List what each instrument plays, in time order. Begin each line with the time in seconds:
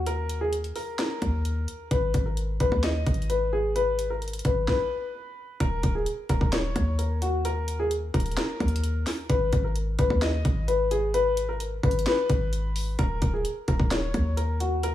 Already playing: 808-style bass D#2
0.06 grand piano A#4, closed hi-hat
0.29 closed hi-hat
0.41 grand piano G#4
0.53 closed hi-hat
0.64 closed hi-hat
0.76 grand piano A#4, open hi-hat
0.99 grand piano A#4, snare, closed hi-hat
1.22 808-style bass D#2, kick, closed hi-hat
1.45 closed hi-hat
1.68 closed hi-hat
1.91 808-style bass G#1, grand piano B4, kick, closed hi-hat
2.14 808-style bass G#1, kick, closed hi-hat
2.26 grand piano A#4
2.37 closed hi-hat
2.60 808-style bass G#1, grand piano B4, kick, closed hi-hat
2.72 808-style bass D#2, kick
2.83 grand piano D#5, snare, closed hi-hat
3.07 808-style bass G#1, kick, closed hi-hat
3.14 closed hi-hat
3.22 closed hi-hat
3.30 grand piano B4, closed hi-hat
3.53 grand piano G#4
3.76 grand piano B4, closed hi-hat
3.99 closed hi-hat
4.10 grand piano A#4
4.22 closed hi-hat
4.28 closed hi-hat
4.33 closed hi-hat
4.39 closed hi-hat
4.45 808-style bass G#1, grand piano B4, kick, closed hi-hat
4.68 grand piano B4, kick, snare
5.60 808-style bass D#1, grand piano A#4, kick, closed hi-hat
5.83 808-style bass D#1, kick, closed hi-hat
5.95 grand piano G#4
6.06 closed hi-hat
6.29 808-style bass D#1, grand piano A#4, kick, closed hi-hat
6.41 808-style bass D#1, kick
6.53 grand piano C#5, snare, closed hi-hat
6.76 808-style bass D#2, kick, closed hi-hat
6.98 grand piano A#4, closed hi-hat
7.22 grand piano F#4, closed hi-hat
7.45 grand piano A#4, closed hi-hat
7.68 closed hi-hat
7.80 grand piano G#4
7.91 closed hi-hat
8.14 808-style bass D#1, grand piano A#4, kick, closed hi-hat
8.20 closed hi-hat
8.26 closed hi-hat
8.31 closed hi-hat
8.37 grand piano A#4, snare, closed hi-hat
8.60 808-style bass D#2, kick, closed hi-hat
8.68 closed hi-hat
8.76 closed hi-hat
8.84 closed hi-hat
9.07 snare, open hi-hat
9.30 808-style bass G#1, grand piano B4, kick, closed hi-hat
9.53 808-style bass G#1, kick, closed hi-hat
9.64 grand piano A#4
9.76 closed hi-hat
9.99 808-style bass G#1, grand piano B4, kick, closed hi-hat
10.10 808-style bass D#2, kick
10.22 grand piano D#5, snare, closed hi-hat
10.45 808-style bass G#1, kick, closed hi-hat
10.68 grand piano B4, closed hi-hat
10.91 grand piano G#4, closed hi-hat
11.14 grand piano B4, closed hi-hat
11.37 closed hi-hat
11.49 grand piano A#4
11.60 closed hi-hat
11.83 808-style bass G#1, grand piano B4, kick, closed hi-hat
11.91 closed hi-hat
11.99 closed hi-hat
12.06 grand piano B4, snare, closed hi-hat
12.30 808-style bass G#1, kick, closed hi-hat
12.53 closed hi-hat
12.76 open hi-hat
12.99 808-style bass D#1, grand piano A#4, kick, closed hi-hat
13.22 808-style bass D#1, kick, closed hi-hat
13.33 grand piano G#4
13.45 closed hi-hat
13.68 808-style bass D#1, grand piano A#4, kick, closed hi-hat
13.80 808-style bass D#1, kick
13.91 grand piano C#5, snare, closed hi-hat
14.14 808-style bass D#2, kick, closed hi-hat
14.37 grand piano A#4, closed hi-hat
14.60 grand piano F#4, closed hi-hat
14.83 grand piano A#4, closed hi-hat